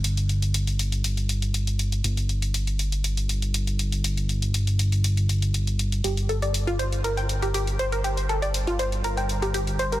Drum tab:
HH |xxxxxxxxxxxxxxxx|xxxxxxxxxxxxxxxx|xxxxxxxxxxxxxxxx|xxxxxxxxxxxxxxxx|

HH |xxxxxxxxxxxxxxxx|